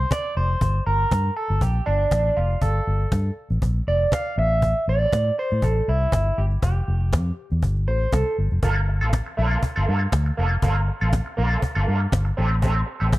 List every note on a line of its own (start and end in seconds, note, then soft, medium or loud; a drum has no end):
0.00 0.12 C5 medium
0.11 0.35 D5 loud
0.11 cajon bass loud
0.11 cajon slap loud
0.24 cajon slap soft
0.37 0.54 F1 loud
0.37 0.83 C5 loud
0.50 cajon slap soft
0.61 0.79 G1 loud
0.61 cajon bass loud
0.76 cajon slap soft
0.86 1.04 G1 medium
0.86 1.36 A#4 medium
0.99 cajon slap soft
1.11 1.29 G2 medium
1.11 cajon bass loud
1.11 cajon slap loud
1.24 cajon slap soft
1.37 1.62 A4 medium
1.50 1.58 G1 medium
1.50 cajon slap soft
1.61 1.79 A#1 medium
1.61 1.87 G4 medium
1.61 cajon bass loud
1.75 cajon slap soft
1.86 2.04 G1 medium
1.86 2.38 D4 medium
2.00 cajon slap soft
2.11 2.29 A1 loud
2.11 cajon bass loud
2.11 cajon slap loud
2.24 cajon slap soft
2.37 2.54 F1 loud
2.37 2.60 F4 medium
2.50 cajon slap soft
2.62 2.79 G1 medium
2.62 3.33 A4 medium
2.62 cajon bass loud
2.87 3.04 G1 medium
2.99 cajon slap soft
3.12 3.29 G2 medium
3.12 cajon bass loud
3.12 cajon slap loud
3.25 cajon slap soft
3.50 3.58 A1 medium
3.50 cajon slap soft
3.62 3.79 A#1 medium
3.62 cajon bass medium
3.76 cajon slap soft
3.87 4.05 F1 medium
3.87 4.13 D5 loud
4.01 cajon slap soft
4.12 4.38 F5 loud
4.12 cajon bass loud
4.12 cajon slap loud
4.25 cajon slap soft
4.38 4.72 A1 loud
4.38 4.84 E5 loud
4.51 cajon slap soft
4.62 cajon bass loud
4.88 5.05 A1 loud
4.88 5.35 D5 medium
5.01 cajon slap soft
5.12 5.30 A2 medium
5.12 cajon bass loud
5.12 cajon slap loud
5.25 cajon slap soft
5.39 5.64 C5 loud
5.51 5.60 A2 medium
5.51 cajon slap soft
5.62 5.80 A1 medium
5.62 5.89 A4 medium
5.62 cajon bass medium
5.76 cajon slap soft
5.88 6.05 C2 medium
5.88 6.40 E4 loud
6.01 cajon slap soft
6.12 6.30 G1 loud
6.12 cajon bass loud
6.12 cajon slap loud
6.25 cajon slap soft
6.38 6.55 G1 loud
6.38 6.45 G4 medium
6.51 cajon slap soft
6.62 6.80 F1 loud
6.62 7.34 G4 medium
6.62 cajon bass loud
6.77 cajon slap soft
6.88 7.15 F1 loud
7.01 cajon slap soft
7.13 7.30 F2 medium
7.13 cajon bass loud
7.13 cajon slap loud
7.26 cajon slap soft
7.50 7.59 E2 medium
7.50 cajon slap soft
7.62 7.88 G1 loud
7.62 cajon bass medium
7.76 cajon slap soft
7.88 8.05 A1 medium
7.88 8.13 C5 loud
8.01 cajon slap soft
8.12 8.22 C2 loud
8.12 8.36 A4 medium
8.12 cajon bass loud
8.12 cajon slap loud
8.25 cajon slap soft
8.38 8.47 G1 loud
8.51 8.60 F1 medium
8.51 cajon slap soft
8.63 9.02 G1 medium
8.63 8.80 A#3 medium
8.63 8.76 F4 loud
8.63 8.75 A4 medium
8.63 cajon bass loud
8.77 muted clean electric guitar stroke soft
8.88 muted clean electric guitar stroke soft
9.01 9.19 A1 medium
9.01 9.12 A#3 medium
9.01 9.13 F4 medium
9.01 9.13 A4 medium
9.01 cajon slap soft
9.13 muted clean electric guitar stroke soft
9.13 cajon bass loud
9.13 cajon slap loud
9.26 muted clean electric guitar stroke medium
9.26 cajon slap soft
9.37 9.56 A#1 loud
9.37 9.52 A#3 medium
9.37 9.51 F4 medium
9.37 9.50 A#4 medium
9.51 9.62 A#3 medium
9.51 9.63 F4 medium
9.51 9.63 A4 medium
9.51 cajon slap soft
9.63 muted clean electric guitar stroke soft
9.63 cajon bass loud
9.76 9.85 G1 medium
9.76 9.87 A#3 medium
9.76 9.88 F4 medium
9.76 9.88 A4 medium
9.76 cajon slap soft
9.88 10.06 G2 loud
9.88 10.02 A#3 medium
9.88 10.02 F4 medium
9.88 10.00 A4 medium
10.01 muted clean electric guitar stroke soft
10.01 cajon slap soft
10.12 10.30 D2 medium
10.12 cajon bass loud
10.12 cajon slap loud
10.25 muted clean electric guitar stroke medium
10.25 cajon slap soft
10.37 10.55 F1 loud
10.37 10.55 A#3 medium
10.37 10.51 F4 medium
10.37 10.50 A4 medium
10.51 muted clean electric guitar stroke soft
10.51 cajon slap soft
10.62 10.89 G1 medium
10.62 10.80 A#3 medium
10.62 10.76 F4 loud
10.62 10.75 A4 loud
10.62 cajon bass loud
10.76 muted clean electric guitar stroke medium
10.88 muted clean electric guitar stroke soft
11.00 11.19 A1 medium
11.00 11.12 A#3 medium
11.00 11.13 F4 medium
11.00 11.13 A4 medium
11.00 cajon slap soft
11.13 muted clean electric guitar stroke soft
11.13 cajon bass loud
11.13 cajon slap loud
11.25 muted clean electric guitar stroke soft
11.25 cajon slap soft
11.37 11.55 A#1 loud
11.37 11.51 A#3 medium
11.37 11.50 F4 loud
11.37 11.50 A#4 loud
11.50 11.61 A#3 medium
11.50 11.61 F4 medium
11.50 11.62 A4 medium
11.50 cajon slap soft
11.62 muted clean electric guitar stroke soft
11.62 cajon bass loud
11.75 11.84 G1 medium
11.75 11.86 A#3 medium
11.75 11.87 F4 medium
11.75 11.88 A4 medium
11.87 12.05 G2 loud
11.87 12.01 A#3 medium
11.87 12.01 F4 medium
11.87 11.99 A4 medium
12.00 muted clean electric guitar stroke medium
12.00 cajon slap soft
12.12 12.30 G1 medium
12.12 cajon bass loud
12.12 cajon slap loud
12.25 muted clean electric guitar stroke soft
12.25 cajon slap soft
12.37 12.82 A1 loud
12.37 12.55 C4 medium
12.37 12.51 G4 medium
12.37 12.49 A4 medium
12.51 muted clean electric guitar stroke medium
12.51 cajon slap soft
12.62 12.80 C4 loud
12.62 12.75 G4 loud
12.62 12.74 A4 loud
12.62 cajon bass loud
12.75 muted clean electric guitar stroke medium
12.86 muted clean electric guitar stroke soft
13.00 13.19 A1 medium
13.00 13.11 C4 medium
13.00 13.11 G4 medium
13.00 13.12 A4 medium
13.00 cajon slap soft
13.12 muted clean electric guitar stroke soft
13.12 cajon bass loud
13.12 cajon slap loud